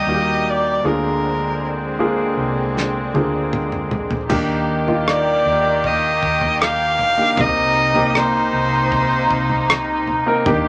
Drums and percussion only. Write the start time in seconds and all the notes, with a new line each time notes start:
2.77 snare
3.15 high tom
3.53 mid tom
3.72 mid tom
3.91 floor tom
4.11 floor tom
4.30 kick, floor tom, crash
4.88 floor tom
5.08 cross-stick
5.84 kick, floor tom
6.23 kick
6.41 floor tom
6.62 cross-stick
6.99 floor tom
7.37 kick, floor tom
7.96 floor tom
8.15 cross-stick
8.92 kick, floor tom
9.31 kick
9.50 floor tom
9.70 cross-stick
10.07 floor tom
10.46 kick, floor tom